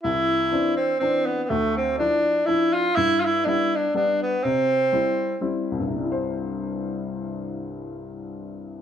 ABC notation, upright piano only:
X:1
M:3/4
L:1/8
Q:"Swing" 1/4=122
K:C
V:1 name="Upright piano"
C,,2 [E,CD]2 [E,CD]2 | D,,2 [F,DE]2 [F,DE]2 | G,,2 [G,B,D]2 [G,B,D]2 | C,2 [G,CE]2 [G,CE]2 |
[C,,G,,C,G,Ec]6- | [C,,G,,C,G,Ec]6 |]